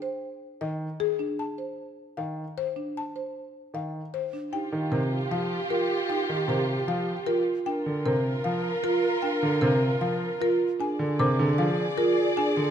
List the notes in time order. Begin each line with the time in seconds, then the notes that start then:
0.02 C5
0.61 D#3 D#5
1.00 G#4
1.19 D4
1.39 A5
1.58 C5
2.17 D#3 F5
2.58 C5
2.76 D4
2.97 A5
3.16 C5
3.74 D#3 F5
4.14 C5
4.33 D4
4.53 D#4 F4 G4 G5
4.72 D#3
4.92 C3 A#4 C5
5.31 F3 F5
5.70 F4 A#4
6.09 D#4 G5
6.29 D#3
6.48 C3 A#4 C5
6.88 F3 F5
7.27 F4 A#4
7.66 D4 F4 A#4 G5
7.86 D3
8.05 C3 A#4 C5
8.44 F3 F5
8.83 F4 A#4
9.22 D4 G5
9.43 D3
9.61 C3 A#4 C5
10.01 F3 F5
10.41 F4 A#4
10.79 D4 G#4 D5 G#5
10.99 D3
11.19 C3 A#4 C5 D6
11.39 D3
11.58 F3 F5
11.98 F4 A#4
12.37 D4 G#5
12.57 D3